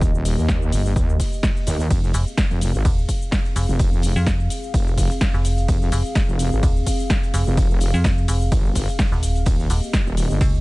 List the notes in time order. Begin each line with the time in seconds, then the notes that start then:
Already playing: D#1 A#3 G4 D#5
0.01 kick, closed hi-hat, shaker
0.15 shaker
0.25 closed hi-hat, open hi-hat, shaker
0.38 D#2, snare, shaker
0.48 kick, snare, closed hi-hat, shaker
0.62 shaker
0.72 G1, closed hi-hat, open hi-hat, shaker
0.86 shaker
0.96 D#2, kick, closed hi-hat, shaker
1.09 shaker
1.20 kick, snare, closed hi-hat, open hi-hat, shaker
1.33 closed hi-hat, shaker
1.43 kick, snare, open hi-hat, shaker
1.56 snare, shaker
1.67 D#2, snare, closed hi-hat, open hi-hat, shaker
1.80 closed hi-hat, shaker
1.90 F1 C4 G#4 F5, kick, closed hi-hat, ride, shaker
2.04 snare, shaker
2.13 F1, closed hi-hat, open hi-hat, shaker
2.28 shaker
2.37 kick, snare, closed hi-hat, ride, shaker
2.51 F1, shaker
2.61 snare, closed hi-hat, open hi-hat, shaker
2.74 G#1, shaker
2.85 D#1, kick, closed hi-hat, ride, shaker
2.98 shaker
3.09 kick, closed hi-hat, open hi-hat, shaker
3.22 shaker
3.31 kick, snare, closed hi-hat, ride, shaker
3.45 closed hi-hat, shaker
3.56 F1, snare, closed hi-hat, open hi-hat, shaker
3.69 F1, shaker
3.79 kick, closed hi-hat, ride, shaker
3.93 shaker
4.02 closed hi-hat, open hi-hat, shaker
4.16 F2, snare, shaker
4.27 kick, snare, closed hi-hat, ride, shaker
4.40 shaker
4.50 closed hi-hat, open hi-hat, shaker
4.64 shaker
4.74 F1, kick, closed hi-hat, ride, shaker
4.87 shaker
4.98 kick, snare, closed hi-hat, open hi-hat, shaker
5.11 closed hi-hat, shaker
5.21 kick, snare, open hi-hat, ride, shaker
5.34 F1, snare, shaker
5.45 closed hi-hat, open hi-hat, shaker
5.58 closed hi-hat, shaker
5.68 F1, kick, closed hi-hat, ride, shaker
5.82 snare, shaker
5.92 F1, closed hi-hat, open hi-hat, shaker
6.05 shaker
6.15 kick, snare, closed hi-hat, ride, shaker
6.29 F1, shaker
6.39 snare, closed hi-hat, open hi-hat, shaker
6.52 G#1, shaker
6.63 D#1, kick, closed hi-hat, ride, shaker
6.76 shaker
6.87 kick, closed hi-hat, open hi-hat, shaker
7.00 shaker
7.10 kick, snare, closed hi-hat, ride, shaker
7.23 closed hi-hat, shaker
7.34 F1, snare, closed hi-hat, open hi-hat, shaker
7.47 F1, shaker
7.57 kick, closed hi-hat, ride, shaker
7.71 shaker
7.80 closed hi-hat, open hi-hat, shaker
7.93 F2, snare, shaker
8.04 kick, snare, closed hi-hat, ride, shaker
8.18 shaker
8.28 F1, closed hi-hat, open hi-hat, shaker
8.42 shaker
8.52 G1, kick, closed hi-hat, ride, shaker
8.65 shaker
8.75 kick, snare, closed hi-hat, open hi-hat, shaker
8.88 closed hi-hat, shaker
8.99 kick, snare, open hi-hat, ride, shaker
9.12 D#1, snare, shaker
9.23 closed hi-hat, open hi-hat, shaker
9.35 closed hi-hat, shaker
9.46 D#1 A#3 G4 D#5, kick, closed hi-hat, ride, shaker
9.59 snare, shaker
9.70 D#1, closed hi-hat, open hi-hat, shaker
9.83 shaker
9.93 kick, snare, closed hi-hat, ride, shaker
10.06 D#1, shaker
10.17 snare, closed hi-hat, open hi-hat, shaker
10.30 G1, shaker
10.41 C#2, kick, closed hi-hat, ride, shaker
10.54 shaker